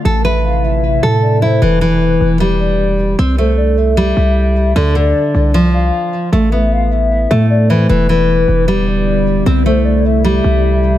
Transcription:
<<
  \new Staff \with { instrumentName = "Soft synth lead" } { \time 4/4 \key e \phrygian \tempo 4 = 153 r8 e''8 f''8 e''4. d''8 c''8 | b'2~ b'8 d''4. | r8 c''8 d''8 e''2~ e''8 | d''2~ d''8 f''4. |
r8 e''8 f''8 e''4. d''8 c''8 | b'2~ b'8 d''4. | r8 c''8 d''8 e''2~ e''8 | }
  \new Staff \with { instrumentName = "Nylon-string guitar" } { \clef bass \time 4/4 \key e \phrygian a'8 b'2 a'4 e'8 | e8 e4. g2 | c'8 a4. g2 | d8 d4. f2 |
a8 b2 a4 e8 | e8 e4. g2 | c'8 a4. g2 | }
  \new Staff \with { instrumentName = "Ambient pad" } { \clef bass \time 4/4 \key e \phrygian << { e'1 | r1 | r1 | r1 |
r1 | e'1~ | e'1 | } \\ { <c e a>1 | r1 | r1 | r1 |
r1 | <d g b>1 | <c e>1 | } >> }
  \new Staff \with { instrumentName = "808-style bass" } { \clef bass \time 4/4 \key e \phrygian a,,2~ a,,8 a,4. | e,,4. e,,2~ e,,8 | c,2~ c,8 c,4. | d,4 r8 c,4. r4 |
a,,2~ a,,8 a,4. | e,,4. e,,2~ e,,8 | c,2~ c,8 c,4. | }
>>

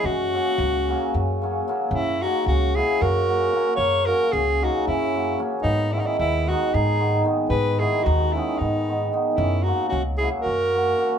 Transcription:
<<
  \new Staff \with { instrumentName = "Alto saxophone" } { \time 7/8 \key fis \mixolydian \tempo 4 = 113 fis'2. r8 | e'8 fis'8 fis'8 gis'8 ais'4. | cis''8 ais'8 gis'8 fis'8 e'4~ e'32 r16. | dis'8 e'32 dis'32 e'16 e'8 fis'8 gis'4 r8 |
b'8 gis'8 fis'8 e'8 dis'4~ dis'32 r16. | e'8 fis'8 fis'8 gis'8 ais'4. | }
  \new Staff \with { instrumentName = "Accordion" } { \time 7/8 \key fis \mixolydian cis'2. r8 | cis'8 dis'8 cis'8 e'8 fis'4. | ais'8 fis'8 cis'8 dis'8 cis'4~ cis'32 r16. | b8 cis'32 b32 cis'16 b8 dis'8 dis'4 r8 |
gis'8 e'8 dis'8 cis'8 b4~ b32 r16. | cis'8 dis'8 cis'8 e'8 fis'4. | }
  \new Staff \with { instrumentName = "Hammered dulcimer" } { \time 7/8 \key fis \mixolydian r8 <cis fis ais cis'>8 r8 <cis fis ais cis'>8 r8 <cis fis ais cis'>8 <cis fis ais cis'>8 | r8 <cis fis ais cis'>8 r8 <cis fis ais cis'>8 r8 <cis fis ais cis'>8 <cis fis ais cis'>8 | r8 <cis fis ais cis'>8 r8 <cis fis ais cis'>8 r8 <cis fis ais cis'>8 <cis fis ais cis'>8 | r8 <dis gis b dis'>8 r8 <dis gis b dis'>8 r8 <dis gis b dis'>8 <dis gis b dis'>8 |
r8 <dis gis b dis'>8 r8 <dis gis b dis'>8 r8 <dis gis b dis'>8 <dis gis b dis'>8 | r8 <fis ais cis' fis'>8 r8 <fis ais cis' fis'>8 r8 <fis ais cis' fis'>8 <fis ais cis' fis'>8 | }
  \new Staff \with { instrumentName = "Upright bass" } { \clef bass \time 7/8 \key fis \mixolydian fis,4 cis,4 fis,4. | fis,4 cis,4 fis,4. | fis,4 cis,4 fis,4. | gis,4 dis,4 gis,4. |
gis,4 dis,4 gis,4. | fis,4 cis,4 fis,4. | }
>>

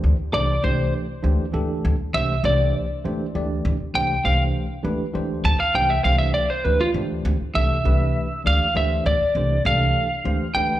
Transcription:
<<
  \new Staff \with { instrumentName = "Lead electric guitar" } { \time 6/8 \key d \dorian \tempo 4. = 67 r8 d''8 c''8 r4. | r8 e''8 d''8 r4. | r8 g''8 f''8 r4. | a''16 f''16 g''16 e''16 f''16 e''16 d''16 c''16 b'16 f'16 r8 |
r8 e''4. f''8 e''8 | d''4 f''4. g''8 | }
  \new Staff \with { instrumentName = "Tine electric piano" } { \time 6/8 \key d \dorian <e a d' g' c''>8 <e a d' g' c''>8 <e a d' g' d''>8 r8 <e a d' g' c''>8 <e a d' g' a'>8 | r8 <e a d' g' c''>8 <e a d' g' c''>8 r8 <e a d' g' c''>8 <e a d' g' d''>8 | r8 <e a d' g' c''>8 <e a d' g' c''>8 r8 <e a d' g' b'>8 <e a d' g' c''>8 | r8 <e a d' g' c''>8 <e a d' g' c''>8 r8 <e a d' g' c''>8 <e a d' g' c''>8 |
r8 <e a d' g' a'>8 <e a d' g' b'>8 r8 <e a d' g' d''>8 <e a d' g' c''>8 | r8 <e a d' g' c''>8 <e a d' g' a'>8 r8 <e a d' g' c''>8 <e a d' g' b'>8 | }
  \new Staff \with { instrumentName = "Upright bass" } { \clef bass \time 6/8 \key d \dorian d,16 r16 c,8 c,8 r8 d,16 r16 d,8 | d,16 r16 c,8 c,8 r8 d,16 r16 d,8 | d,16 r16 c,8 c,8 r8 d,16 r16 d,8 | d,16 r16 c,8 c,8 r8 d,16 r16 d,8 |
d,16 r16 c,8 c,8 r8 d,16 r16 d,8 | d,16 r16 c,8 c,8 r8 d,16 r16 d,8 | }
>>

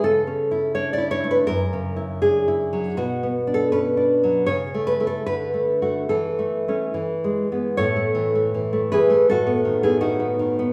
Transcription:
\new Staff \with { instrumentName = "Nylon-string guitar" } { \time 2/4 \key a \major \tempo 4 = 80 << { a'4 cis''16 d''16 cis''16 b'16 | ais'4 gis'4 | fis'8. a'16 b'4 | cis''8 b'16 a'16 b'4 |
a'4. r8 | <a' cis''>4. <gis' b'>8 | <fis' a'>8. <e' gis'>16 <dis' fis'>4 | } \\ { \tuplet 3/2 { cis8 cis'8 e'8 d'8 e'8 a8 } | \tuplet 3/2 { fis,8 cis8 e'8 d'8 e'8 fis8 } | \tuplet 3/2 { b,8 b8 d'8 cis'8 d'8 fis8 } | \tuplet 3/2 { cis8 a8 <a e'>8 d8 a8 <a fis'>8 } |
\tuplet 3/2 { e8 a8 <a cis'>8 e8 gis8 <gis b>8 } | a,16 a16 e16 a16 e16 a16 e16 a16 | a,16 b16 dis16 b16 dis16 b16 dis16 b16 | } >> }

